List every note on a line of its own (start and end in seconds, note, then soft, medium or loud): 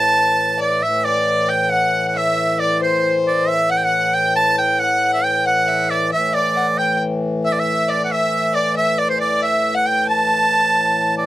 0.00 0.82 A2 medium
0.00 0.82 E3 medium
0.00 0.59 A5 medium
0.00 0.59 A5 loud
0.59 0.80 D5 medium
0.59 0.85 D5 medium
0.83 6.12 A2 medium
0.83 6.12 E3 medium
0.83 1.03 E5 medium
0.83 1.06 E5 medium
1.05 1.51 D5 medium
1.05 1.50 D5 medium
1.49 1.70 G5 medium
1.49 1.73 G5 medium
1.71 2.12 F#5 medium
1.71 2.08 F#5 loud
2.08 2.19 F#5 medium
2.15 2.56 E5 medium
2.15 2.62 E5 loud
2.60 2.80 D5 medium
2.60 2.82 D5 medium
2.82 3.50 C5 medium
2.82 3.16 C5 medium
3.28 3.50 D5 medium
3.48 3.71 E5 medium
3.48 3.70 E5 loud
3.70 3.84 F#5 medium
3.70 3.79 F#5 loud
3.77 3.86 G5 medium
3.84 4.16 F#5 medium
3.84 4.15 F#5 loud
4.14 4.35 G5 loud
4.14 4.38 G5 medium
4.36 4.57 A5 loud
4.36 4.60 A5 medium
4.58 4.81 G5 medium
4.58 4.80 G5 medium
4.80 5.13 F#5 loud
4.80 5.26 F#5 medium
5.14 5.25 E5 medium
5.24 5.46 G5 medium
5.24 5.47 G5 medium
5.46 5.70 F#5 medium
5.46 5.92 F#5 loud
5.68 5.92 E5 medium
5.90 6.11 D5 medium
5.90 6.13 D5 medium
6.12 11.26 A2 medium
6.12 11.26 E3 medium
6.12 6.33 E5 medium
6.12 6.36 E5 loud
6.34 6.55 D5 medium
6.34 6.80 D5 medium
6.57 6.67 F#5 medium
6.78 6.99 G5 medium
6.78 7.00 G5 medium
7.45 7.57 E5 medium
7.45 7.54 E5 medium
7.53 7.61 D5 medium
7.58 7.90 E5 medium
7.58 7.92 E5 medium
7.88 8.11 D5 medium
7.88 8.04 D5 medium
8.05 8.14 F#5 medium
8.11 8.52 E5 medium
8.11 8.57 E5 medium
8.55 8.75 D5 medium
8.55 8.76 D5 medium
8.77 9.00 E5 medium
8.98 9.10 D5 medium
8.98 9.09 D5 medium
9.09 9.19 C5 medium
9.09 9.20 C5 medium
9.19 9.44 D5 medium
9.19 9.41 D5 medium
9.43 9.73 E5 medium
9.43 9.76 E5 medium
9.75 9.87 F#5 medium
9.75 9.88 F#5 medium
9.86 10.07 G5 medium
9.86 10.09 G5 medium
10.07 11.14 A5 medium
10.07 11.15 A5 loud
11.18 11.26 D5 medium